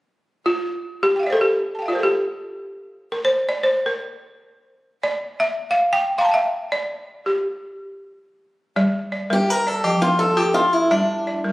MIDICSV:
0, 0, Header, 1, 3, 480
1, 0, Start_track
1, 0, Tempo, 500000
1, 11063, End_track
2, 0, Start_track
2, 0, Title_t, "Balafon"
2, 0, Program_c, 0, 12
2, 440, Note_on_c, 0, 65, 68
2, 988, Note_on_c, 0, 67, 82
2, 1000, Note_off_c, 0, 65, 0
2, 1113, Note_on_c, 0, 79, 38
2, 1147, Note_on_c, 0, 77, 37
2, 1181, Note_on_c, 0, 76, 41
2, 1215, Note_on_c, 0, 74, 49
2, 1248, Note_off_c, 0, 67, 0
2, 1248, Note_off_c, 0, 79, 0
2, 1248, Note_on_c, 0, 72, 52
2, 1272, Note_on_c, 0, 69, 88
2, 1282, Note_off_c, 0, 77, 0
2, 1282, Note_on_c, 0, 70, 50
2, 1302, Note_off_c, 0, 69, 0
2, 1314, Note_on_c, 0, 69, 57
2, 1316, Note_off_c, 0, 76, 0
2, 1350, Note_off_c, 0, 74, 0
2, 1354, Note_on_c, 0, 67, 76
2, 1383, Note_off_c, 0, 72, 0
2, 1417, Note_off_c, 0, 70, 0
2, 1450, Note_off_c, 0, 69, 0
2, 1678, Note_on_c, 0, 81, 29
2, 1716, Note_on_c, 0, 79, 35
2, 1748, Note_on_c, 0, 77, 35
2, 1769, Note_off_c, 0, 67, 0
2, 1782, Note_on_c, 0, 76, 37
2, 1807, Note_on_c, 0, 65, 69
2, 1814, Note_off_c, 0, 81, 0
2, 1814, Note_on_c, 0, 74, 42
2, 1847, Note_on_c, 0, 72, 45
2, 1850, Note_off_c, 0, 79, 0
2, 1872, Note_on_c, 0, 70, 50
2, 1883, Note_off_c, 0, 77, 0
2, 1912, Note_on_c, 0, 69, 46
2, 1916, Note_off_c, 0, 76, 0
2, 1949, Note_off_c, 0, 74, 0
2, 1952, Note_on_c, 0, 67, 74
2, 1959, Note_off_c, 0, 65, 0
2, 1983, Note_off_c, 0, 72, 0
2, 2012, Note_off_c, 0, 70, 0
2, 2049, Note_off_c, 0, 69, 0
2, 2563, Note_off_c, 0, 67, 0
2, 2996, Note_on_c, 0, 70, 70
2, 3117, Note_on_c, 0, 72, 75
2, 3126, Note_off_c, 0, 70, 0
2, 3347, Note_on_c, 0, 74, 83
2, 3372, Note_off_c, 0, 72, 0
2, 3489, Note_on_c, 0, 72, 86
2, 3511, Note_off_c, 0, 74, 0
2, 3706, Note_on_c, 0, 70, 73
2, 3727, Note_off_c, 0, 72, 0
2, 4230, Note_off_c, 0, 70, 0
2, 4833, Note_on_c, 0, 74, 79
2, 5183, Note_on_c, 0, 76, 81
2, 5197, Note_off_c, 0, 74, 0
2, 5479, Note_on_c, 0, 77, 78
2, 5493, Note_off_c, 0, 76, 0
2, 5690, Note_on_c, 0, 79, 86
2, 5705, Note_off_c, 0, 77, 0
2, 5925, Note_off_c, 0, 79, 0
2, 5932, Note_on_c, 0, 84, 38
2, 5938, Note_on_c, 0, 77, 82
2, 5961, Note_on_c, 0, 82, 45
2, 5998, Note_on_c, 0, 81, 47
2, 6037, Note_on_c, 0, 79, 49
2, 6051, Note_off_c, 0, 77, 0
2, 6063, Note_on_c, 0, 77, 51
2, 6066, Note_off_c, 0, 84, 0
2, 6085, Note_on_c, 0, 76, 73
2, 6097, Note_off_c, 0, 82, 0
2, 6133, Note_off_c, 0, 81, 0
2, 6169, Note_off_c, 0, 79, 0
2, 6198, Note_off_c, 0, 77, 0
2, 6451, Note_on_c, 0, 74, 81
2, 6470, Note_off_c, 0, 76, 0
2, 6971, Note_on_c, 0, 67, 59
2, 6996, Note_off_c, 0, 74, 0
2, 7988, Note_off_c, 0, 67, 0
2, 8412, Note_on_c, 0, 55, 69
2, 8414, Note_on_c, 0, 74, 59
2, 8745, Note_off_c, 0, 74, 0
2, 8756, Note_on_c, 0, 74, 60
2, 8760, Note_off_c, 0, 55, 0
2, 8928, Note_on_c, 0, 55, 66
2, 8931, Note_on_c, 0, 70, 65
2, 9270, Note_off_c, 0, 74, 0
2, 9276, Note_off_c, 0, 55, 0
2, 9281, Note_on_c, 0, 74, 52
2, 9448, Note_on_c, 0, 53, 75
2, 9449, Note_off_c, 0, 70, 0
2, 9615, Note_on_c, 0, 70, 53
2, 9624, Note_off_c, 0, 74, 0
2, 9793, Note_off_c, 0, 53, 0
2, 9954, Note_on_c, 0, 69, 65
2, 9955, Note_on_c, 0, 65, 77
2, 10118, Note_off_c, 0, 65, 0
2, 10129, Note_on_c, 0, 65, 58
2, 10134, Note_off_c, 0, 70, 0
2, 10473, Note_on_c, 0, 55, 76
2, 10476, Note_off_c, 0, 69, 0
2, 10477, Note_on_c, 0, 74, 62
2, 10649, Note_off_c, 0, 65, 0
2, 10809, Note_off_c, 0, 74, 0
2, 10821, Note_off_c, 0, 55, 0
2, 10821, Note_on_c, 0, 74, 66
2, 10985, Note_on_c, 0, 70, 60
2, 10988, Note_on_c, 0, 55, 68
2, 11063, Note_off_c, 0, 55, 0
2, 11063, Note_off_c, 0, 70, 0
2, 11063, Note_off_c, 0, 74, 0
2, 11063, End_track
3, 0, Start_track
3, 0, Title_t, "Steel-string acoustic guitar"
3, 0, Program_c, 1, 25
3, 8954, Note_on_c, 1, 67, 81
3, 9121, Note_off_c, 1, 67, 0
3, 9121, Note_on_c, 1, 70, 96
3, 9290, Note_off_c, 1, 70, 0
3, 9290, Note_on_c, 1, 69, 86
3, 9444, Note_off_c, 1, 69, 0
3, 9444, Note_on_c, 1, 67, 88
3, 9617, Note_on_c, 1, 65, 81
3, 9625, Note_off_c, 1, 67, 0
3, 9781, Note_on_c, 1, 69, 73
3, 9797, Note_off_c, 1, 65, 0
3, 9953, Note_off_c, 1, 69, 0
3, 9953, Note_on_c, 1, 67, 88
3, 10121, Note_on_c, 1, 65, 82
3, 10137, Note_off_c, 1, 67, 0
3, 10298, Note_off_c, 1, 65, 0
3, 10298, Note_on_c, 1, 64, 69
3, 10471, Note_off_c, 1, 64, 0
3, 10471, Note_on_c, 1, 62, 70
3, 10862, Note_off_c, 1, 62, 0
3, 11063, End_track
0, 0, End_of_file